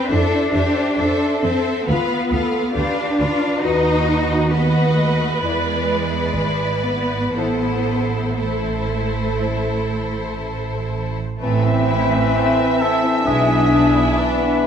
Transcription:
Already playing: viola section B4
0.09 double bass section F2, cello section D4, french horn section E4 A4, violin section A4 C5 E5, viola section A4
0.53 double bass section F2, viola section G4, violin section A4 C5 E5
0.98 double bass section F2, violin section A4 C5 E5, viola section A4
1.43 double bass section F2, cello section C4, violin section A4 C5 E5
1.87 double bass section D2, cello section B3, french horn section F4 B4, violin section F4 B4 F5, viola section B4
2.31 double bass section D2, violin section F4 B4 F5, viola section A4
2.75 double bass section D2, cello section D4, violin section F4 B4 F5, viola section G4
3.20 double bass section D2, viola section F4, violin section F4 B4 F5
3.63 double bass section D#2, cello section D#4, viola section F#4, violin section F#4 B4 D#5, french horn section F#4 B4
4.52 cello section B3, violin section F#4 B4 D#5, viola section B4
4.97 cello section A3
5.42 double bass section E2, cello section G#3, violin section E4 B4 D5, french horn section E4 D5
6.36 double bass section G#1, viola section B4
6.85 cello section B3
7.36 double bass section A1, cello section B3, violin section E4 A4 C5, french horn section E4 C5, viola section A4
8.39 cello section A3, violin section E4 A4 C5
9.40 french horn section E4 C5
11.41 double bass section A1, cello section A2, bassoon E3, violin section A3 E5, clarinet C4, viola section C4, french horn section C4 E4, cor anglais B4, flute section E5
11.66 violin section C4
11.89 violin section E4
12.13 violin section C4
12.36 violin section A3
12.59 violin section C4
12.80 violin section E4, cor anglais A4
13.05 violin section C4
13.26 double bass section B1, cello section B2, bassoon E3, violin section G#3, clarinet D4, viola section D4, french horn section D4, cor anglais G#4, flute section E5
13.50 violin section B3
13.74 violin section D4
13.96 violin section E4
14.17 bassoon E3, clarinet D4, violin section D4, cor anglais B4, flute section E5
14.41 violin section B3
14.63 violin section G#3

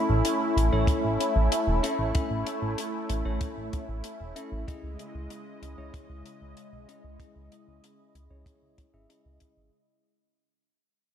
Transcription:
Already playing: analog synth pad A3 C#4 E4, tine electric piano C#4 E4 A4 E5
0.09 analog synth bass A1
0.25 closed hi-hat
0.57 analog synth bass A1, closed hi-hat
0.73 analog synth bass A1, tine electric piano C#4 E4 A4 C#5
0.87 kick, closed hi-hat
1.04 analog synth bass A1
1.21 closed hi-hat
1.36 analog synth bass A1
1.52 closed hi-hat
1.67 analog synth bass E1
1.83 tine electric piano C#4 E4 A4 E5, closed hi-hat
1.99 analog synth bass A1
2.15 tine electric piano C#4 E4 A4 E5, kick, closed hi-hat
2.30 analog synth bass A1
2.47 closed hi-hat
2.62 analog synth bass A1
2.78 closed hi-hat
3.09 analog synth bass A1, closed hi-hat
3.25 analog synth bass A1, tine electric piano C#4 E4 A4 C#5
3.41 kick, closed hi-hat
3.57 analog synth bass A1
3.73 kick, closed hi-hat
3.89 analog synth bass A1
4.04 closed hi-hat
4.20 analog synth bass E1
4.36 tine electric piano C#4 E4 A4 E5, closed hi-hat
4.52 analog synth bass A1
4.68 analog synth pad C#3 G#3 D#5, tine electric piano C#4 E4 G#4 D#5, kick, closed hi-hat
4.83 analog synth bass C#2
4.99 closed hi-hat
5.15 analog synth bass C#2
5.30 closed hi-hat
5.62 analog synth bass C#2, closed hi-hat
5.78 analog synth bass C#2, tine electric piano C#4 E4 G#4 C#5
5.94 kick, closed hi-hat
6.09 analog synth bass C#2
6.26 closed hi-hat
6.41 analog synth bass C#2
6.57 closed hi-hat
6.73 analog synth bass B1
6.89 tine electric piano C#4 E4 G#4 D#5, closed hi-hat
7.04 analog synth bass C#2
7.20 tine electric piano C#4 E4 G#4 D#5, kick, closed hi-hat
7.36 analog synth bass C#2
7.52 closed hi-hat
7.67 analog synth bass C#2
7.84 closed hi-hat
8.15 analog synth bass C#2, closed hi-hat
8.30 analog synth bass C#2, tine electric piano C#4 E4 G#4 C#5
8.46 kick, closed hi-hat
8.62 analog synth bass C#2
8.78 kick, closed hi-hat
8.94 analog synth bass G#1, tine electric piano C#4 E4 G#4 E5
9.10 tine electric piano C#4 E4 G#4 D#5, closed hi-hat
9.25 analog synth bass C#2
9.40 kick, closed hi-hat
9.57 analog synth bass G#1

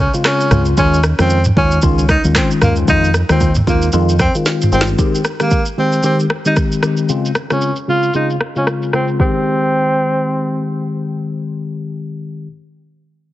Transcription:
0.00 tenor saxophone C#4
0.14 tine electric piano C#3 G#3 C4 F4, shaker
0.25 tenor saxophone C#4, cross-stick, clap, shaker
0.40 shaker
0.51 fingered electric bass C#2, tine electric piano C#3 G#3 C4 F4, cross-stick, mid tom, shaker
0.65 shaker
0.77 fingered electric bass D#2, tine electric piano D#3 G#3 C#4 F4, tenor saxophone C#4, kick, shaker
0.94 shaker
1.03 cross-stick, shaker
1.19 fingered electric bass F2, tine electric piano D#3 G#3 C#4 F4, tenor saxophone C4, cross-stick, shaker
1.30 shaker
1.44 mid tom, shaker
1.56 fingered electric bass D#2, tine electric piano D#3 G#3 C#4 F4, tenor saxophone C#4, kick
1.71 shaker
1.82 fingered electric bass C#2, tine electric piano D#3 G#3 C#4 F4, kick, shaker
1.99 shaker
2.09 tenor saxophone D#4, kick, cross-stick, shaker
2.24 fingered electric bass D#2, tine electric piano D#3 G#3 C#4 F4, shaker
2.35 tenor saxophone C4, kick, cross-stick, clap, shaker
2.51 shaker
2.62 fingered electric bass D#2, tine electric piano D#3 G#3 C#4 F4, tenor saxophone A#3, cross-stick, mid tom, shaker
2.76 shaker
2.88 fingered electric bass F2, tine electric piano D#3 G#3 C4 F4, tenor saxophone D#4, kick, shaker
3.05 shaker
3.14 cross-stick, shaker
3.29 fingered electric bass D#2, tine electric piano D#3 G#3 C4 F4, tenor saxophone C4, cross-stick, shaker
3.41 kick, shaker
3.55 mid tom, shaker
3.67 fingered electric bass D#2, tine electric piano D#3 G#3 C4 F4, tenor saxophone A#3, kick, shaker
3.82 shaker
3.92 fingered electric bass F2, tine electric piano D#3 G#3 C4 F4, shaker
4.09 shaker
4.19 tenor saxophone C4, kick, cross-stick, shaker
4.35 tine electric piano D#3 G#3 C4 F4, shaker
4.46 snare, shaker
4.61 mid tom, shaker
4.72 fingered electric bass G1, tine electric piano D#3 G#3 C4 F4, tenor saxophone C4, shaker
4.81 snare
4.87 shaker
4.98 tine electric piano D#3 G#3 C4 G4, kick, shaker
5.15 shaker
5.25 cross-stick, shaker
5.40 tine electric piano D#3 G#3 C4 G4, tenor saxophone A#3, cross-stick, shaker
5.51 kick, shaker
5.66 shaker
5.77 tine electric piano D#3 G#3 C4 G4, tenor saxophone C4
5.93 shaker
6.03 tine electric piano D#3 G#3 C4 G4, tenor saxophone C4, shaker
6.20 shaker
6.30 cross-stick
6.45 tine electric piano D#3 G#3 C4 G4, tenor saxophone D#4, shaker
6.56 kick, cross-stick, shaker
6.72 shaker
6.83 tine electric piano D#3 G#3 C4 G4, cross-stick, shaker
6.97 shaker
7.09 tine electric piano C#3 G#3 C4 F4, shaker
7.26 shaker
7.35 cross-stick, shaker
7.50 tine electric piano C#3 G#3 C4 F4, tenor saxophone C#4, cross-stick, shaker
7.62 shaker
7.76 shaker
7.88 tine electric piano C#3 G#3 C4 F4, tenor saxophone F4
8.03 shaker
8.14 tine electric piano C#3 G#3 C4 F4, tenor saxophone D#4, shaker
8.30 shaker
8.41 cross-stick
8.56 tine electric piano C#3 G#3 C4 F4, tenor saxophone C#4, shaker
8.67 cross-stick, shaker
8.83 shaker
8.93 tine electric piano C#3 G#3 C4 F4, tenor saxophone C4, cross-stick, shaker
9.08 shaker
9.19 tine electric piano D#3 G#3 C4 G4, tenor saxophone C4, kick

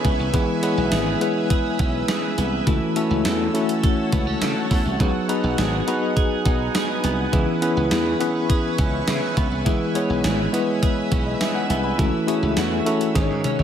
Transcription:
Already playing: clean electric guitar E3 C#4 G#4, tine electric piano B3 C#4 E4 G#4 A4 B4, ambient pad B4 E5 G#5 C#6
0.05 slap bass C#2, clean electric guitar B3, kick, closed hi-hat
0.19 slap bass C2
0.33 slap bass C#2, clean electric guitar E3, tine electric piano G#3 B3 E4 G#4 B4, ambient pad B4 E6, kick, closed hi-hat
0.62 tine electric piano G#3 B3 E4 G#4 B4, clean electric guitar C#4, closed hi-hat
0.77 slap bass B1
0.92 slap bass G#1, clean electric guitar G#4, snare, closed hi-hat, tambourine
1.21 tine electric piano G#3 B3 E4 G#4 B4, clean electric guitar C#4, closed hi-hat
1.50 clean electric guitar G#4, kick, closed hi-hat
1.79 slap bass B1, clean electric guitar C#4, kick, closed hi-hat
2.08 clean electric guitar G#4, snare, closed hi-hat, tambourine
2.38 slap bass C2, clean electric guitar B3, closed hi-hat
2.66 slap bass C#2, clean electric guitar E3, tine electric piano A3 C#4 E4 F#4 A4, ambient pad C#5 F#5 A5 E6, kick, closed hi-hat
2.96 tine electric piano A3 C#4 E4 F#4 A4, clean electric guitar C#4, closed hi-hat
3.11 slap bass C#2
3.25 slap bass E2, clean electric guitar A4, snare, closed hi-hat, tambourine
3.54 tine electric piano A3 C#4 E4 F#4 A4, clean electric guitar C#4, closed hi-hat
3.69 closed hi-hat
3.83 clean electric guitar A4, kick, closed hi-hat
4.12 slap bass C#2, clean electric guitar B3, kick, closed hi-hat
4.27 clean electric guitar C#4
4.41 slap bass C#3, clean electric guitar A4, snare, closed hi-hat, tambourine
4.71 slap bass E2, clean electric guitar A3, kick, open hi-hat
4.85 slap bass C2
4.99 slap bass C#2, clean electric guitar F#3, tine electric piano B3 D#4 F#4 G#4 B4, ambient pad B4 G#5 D#6, kick, closed hi-hat
5.28 tine electric piano B3 D#4 F#4 G#4 B4, clean electric guitar D#4, closed hi-hat
5.44 slap bass B1
5.58 slap bass G#1, clean electric guitar G#4, snare, closed hi-hat, tambourine
5.87 tine electric piano B3 D#4 F#4 G#4 B4, clean electric guitar D#4, closed hi-hat
6.16 clean electric guitar G#4, kick, closed hi-hat
6.45 slap bass B1, clean electric guitar D#4, kick, closed hi-hat
6.75 clean electric guitar G#4, snare, closed hi-hat, tambourine
7.04 slap bass C2, clean electric guitar B3, closed hi-hat
7.32 slap bass C#2, clean electric guitar E3, tine electric piano B3 C#4 E4 G#4 B4, ambient pad E5 G#5 C#6, kick, closed hi-hat
7.61 tine electric piano B3 C#4 E4 G#4 B4, clean electric guitar C#4, closed hi-hat
7.77 slap bass C#2
7.91 slap bass E2, clean electric guitar G#4, snare, closed hi-hat, tambourine
8.20 tine electric piano B3 C#4 E4 G#4 B4, clean electric guitar C#4, closed hi-hat
8.50 clean electric guitar G#4, kick, closed hi-hat
8.78 slap bass C#2, clean electric guitar C#4, kick, closed hi-hat
9.08 slap bass C#3, clean electric guitar G#4, snare, closed hi-hat, tambourine
9.37 slap bass C#2, clean electric guitar B3, kick, closed hi-hat
9.52 slap bass C2
9.65 slap bass C#2, clean electric guitar E3, tine electric piano G#3 B3 E4 G#4 B4, ambient pad E5 E6, kick, closed hi-hat
9.95 tine electric piano G#3 B3 E4 G#4 C#5, clean electric guitar C#4, closed hi-hat
10.10 slap bass B1
10.24 slap bass G#1, clean electric guitar G#4, snare, closed hi-hat, tambourine
10.53 tine electric piano G#3 B3 E4 G#4 B4, clean electric guitar C#4, closed hi-hat
10.83 clean electric guitar G#4, kick, closed hi-hat
11.12 slap bass B1, clean electric guitar C#4, kick, closed hi-hat
11.26 tine electric piano D#5
11.41 clean electric guitar G#4, tine electric piano E5, snare, closed hi-hat, tambourine
11.55 tine electric piano F#5
11.69 slap bass C2, clean electric guitar B3, tine electric piano G#5, closed hi-hat
11.84 tine electric piano B5
11.98 slap bass C#2, clean electric guitar E3, tine electric piano A3 C#4 E4 F#4 A4, ambient pad C#5 E5 F#5 E6, kick, closed hi-hat
12.27 tine electric piano A3 C#4 E4 F#4 G#4, clean electric guitar C#4, closed hi-hat
12.43 slap bass C#2
12.57 slap bass E2, clean electric guitar F#4, snare, closed hi-hat, tambourine
12.85 tine electric piano A3 C#4 E4 F#4 A4, clean electric guitar C#4, closed hi-hat
13.01 closed hi-hat
13.14 slap bass G#1, clean electric guitar D#3, tine electric piano G#3 C#4 D#4 G#4 C5, ambient pad D#5 G#5 D#6, kick, snare, closed hi-hat
13.22 tine electric piano C#5
13.30 slap bass G#2
13.44 clean electric guitar C#4, closed hi-hat, high tom
13.59 slap bass G#1, high tom

